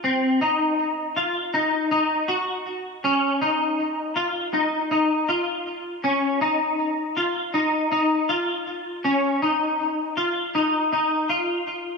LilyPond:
\new Staff \with { instrumentName = "Clean electric guitar" } { \time 4/4 \key des \major \tempo 4 = 80 c'8 ees'4 f'8 ees'8 ees'8 ges'4 | des'8 ees'4 f'8 ees'8 ees'8 f'4 | des'8 ees'4 f'8 ees'8 ees'8 f'4 | des'8 ees'4 f'8 ees'8 ees'8 f'4 | }